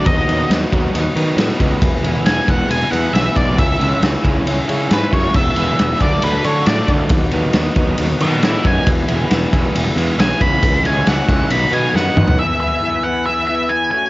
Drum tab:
CC |----------------|----------------|----------------|x---------------|
RD |x-x-x-x-x-x-x-x-|x-x-x-x-x-x-x-x-|x-x-x-x-x-x-x-x-|--x-x-x-x-x-x-x-|
SD |----o-------o---|----o-------o---|----o-------o---|----o-------o---|
T2 |----------------|----------------|----------------|----------------|
FT |----------------|----------------|----------------|----------------|
BD |o-----o-------o-|o-----o-------o-|o-----o-------o-|o-----o-------o-|

CC |----------------|----------------|----------------|----------------|
RD |x-x-x-x-x-x-x-x-|x-x-x-x-x-x-x-x-|x-x-x-x-x-x-----|----------------|
SD |----o-------o---|----o-------o---|----o-------o---|----------------|
T2 |----------------|----------------|--------------o-|----------------|
FT |----------------|----------------|---------------o|----------------|
BD |o-----o-------o-|o-----o-------o-|o-----o---------|----------------|